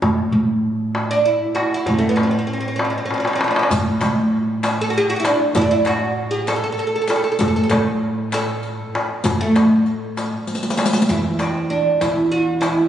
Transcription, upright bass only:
\new Staff \with { instrumentName = "Upright bass" } { \clef bass \time 6/8 \tempo 4. = 65 a,8 a,2 r8 | a,2 r4 | a,8 a,2 r8 | a,2 r4 |
a,8 a,2 r8 | a,2 r4 | e,4. e,4. | }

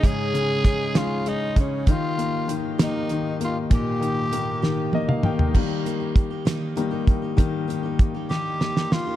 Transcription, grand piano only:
<<
  \new Staff \with { instrumentName = "Grand piano" } { \time 6/8 \key ees \mixolydian \tempo 4. = 65 r2. | r2. | r2 ees''16 f''16 g''8 | r2. |
r2. | }
  \new Staff \with { instrumentName = "Grand piano" } { \clef bass \time 6/8 \key ees \mixolydian <aes, des aes>8 des8 aes8 des8 aes8 des8 | ees8 bes8 ees8 bes8 ees8 bes8 | bes,8 ees8 bes8 ees8 bes8 ees8 | <ees g bes>2 <ees g bes>8 r8 |
<ees g bes>8 r2 r8 | }
>>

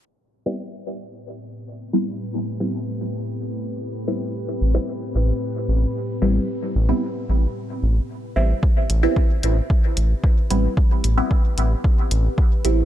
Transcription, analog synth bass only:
\new Staff \with { instrumentName = "Analog synth bass" } { \clef bass \time 4/4 \key a \minor \tempo 4 = 112 r1 | r1 | r8 a,,8 r8 a,,8 r8 a,,8 r8 a,,8 | r8 a,,8 r8 a,,8 r8 a,,8 r8 a,,8 |
r8 a,,8 r8 a,,8 r8 a,,8 r8 a,,8 | r8 a,,8 r8 a,,8 r8 a,,8 r8 a,,8 | }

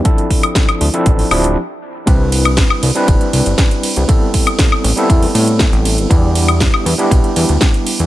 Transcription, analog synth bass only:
\new Staff \with { instrumentName = "Analog synth bass" } { \clef bass \time 4/4 \key c \major \tempo 4 = 119 r4. d,16 r16 a,,16 r16 d,,8 r4 | c,4 r8 c,16 r16 g,,16 r16 c,16 g,,16 r8. c,16 | r4. a,,16 r16 e,16 r16 a,8 r16 a,,8 g,,16 | e,4 r8 e,16 r16 b,,16 r16 e,16 d,16 r8. e,16 | }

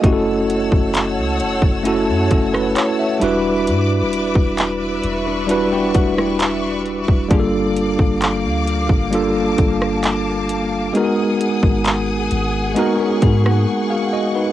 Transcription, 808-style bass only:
\new Staff \with { instrumentName = "808-style bass" } { \clef bass \time 4/4 \key e \dorian \tempo 4 = 66 fis,,8. fis,,8 cis,16 fis,,16 fis,,8 fis,16 fis,,8 r8 e,,8 | g,16. e,,16. e,,8. e,,4 e,,4~ e,,16 e,,16 | g,,8. g,,8 d,8 g,,8. g,,4. | r8. gis,,8. gis,,8 r8 gis,8 r4 | }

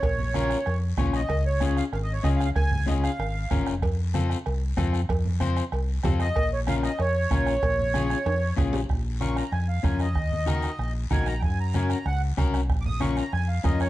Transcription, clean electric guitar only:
\new Staff \with { instrumentName = "Clean electric guitar" } { \time 4/4 \key bes \minor \tempo 4 = 190 r4 <des' f' bes'>8 r4. <des' f' des''>8 r8 | r4 <des' f' aes'>8 r4. <des' f' aes'>8 r8 | r4 <des' f' aes'>8 r4. <des' f' bes'>8 r8 | r4 <c' f' a'>8 r4. <c' f' a'>8 r8 |
r4 <c' f' c''>8 r4. <c' f' a'>8 r8 | r4 <des' f' bes'>8 r4. <des' f' bes'>8 r8 | r4 <des' f' aes'>8 r4. <des' f' aes'>8 r8 | r4 <des' f' bes'>8 r4. <des' f' bes'>8 r8 |
r4 <ees' ges' bes'>8 r4. <ees' ges' bes'>8 r8 | r4 <des' ges' bes'>8 r4. <des' ges' bes'>8 r8 | r4 <des' f' bes'>8 r4. <des' f' bes'>8 r8 | }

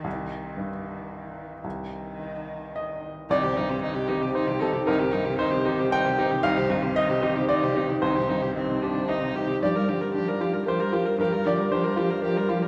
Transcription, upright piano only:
\new Staff \with { instrumentName = "Upright piano" } { \time 3/4 \key c \minor \tempo 4 = 114 << { r2. | r2 ees''4 | d''2 r8 a'8 | bes'4 c''4 g''4 |
f''4 ees''4 d''4 | c''2 ees''4 | d''2 c''4 | bes'8 d''8 c''4 r4 | } \\ { <c, ees'>4 g,2 | c,4 ees'2 | c,8 g,8 ees'8 g'8 c''8 g'8 | c,8 g,8 ees'8 g'8 c''8 g'8 |
c,8 g,8 ees'8 g'8 c''8 g'8 | c,8 g,8 ees'8 g'8 c''8 g'8 | g,8 d8 d'8 f'8 bes'8 f'8 | g,8 d8 d'8 f'8 bes'8 f'8 | } >> }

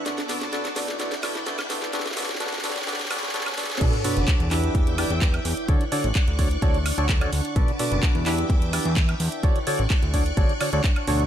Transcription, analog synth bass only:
\new Staff \with { instrumentName = "Analog synth bass" } { \clef bass \time 4/4 \key d \major \tempo 4 = 128 r1 | r1 | b,,16 r8 fis,,16 r16 e,8. e,8. e,8. e,16 r16 | d,16 r8 a,,16 r16 d,8. d,8. d,8. d,16 r16 |
b,,16 r8 fis,,16 r16 e,8. e,8. e,8. e,16 r16 | d,16 r8 a,,16 r16 d,8. a,,16 r8 d,16 r8 d,16 r16 | }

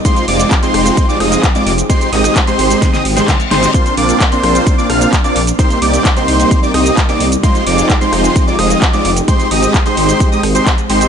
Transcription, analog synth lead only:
\new Staff \with { instrumentName = "Analog synth lead" } { \time 4/4 \key f \dorian \tempo 4 = 130 c'''8 d'''8 r16 c'''4 d'''16 ees'''8 r16 d'''16 r8 | c'''8 ees'''8 r16 c'''4 ees'''16 r16 c'''16 r8 c'''8 | c'''8 d'''8 r16 c'''4 d'''16 f'''8 r16 d'''16 r8 | c'''8 d'''8 r16 c'''4 d'''16 ees'''8 r16 d'''16 r8 |
c'''8 d'''8 r16 c'''4 d'''16 ees'''8 r16 d'''16 r8 | c'''8 ees'''8 r16 c'''4 ees'''16 r16 c'''16 r8 c'''8 | }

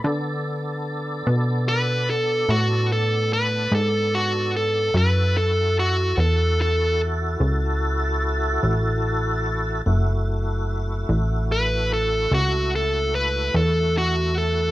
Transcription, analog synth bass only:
\new Staff \with { instrumentName = "Analog synth bass" } { \clef bass \time 12/8 \key fis \minor \tempo 4. = 49 d4. b,4. a,4. gis,4. | fis,4. e,4. cis,4. a,,4. | fis,,4. a,,4. cis,4. e,4. | }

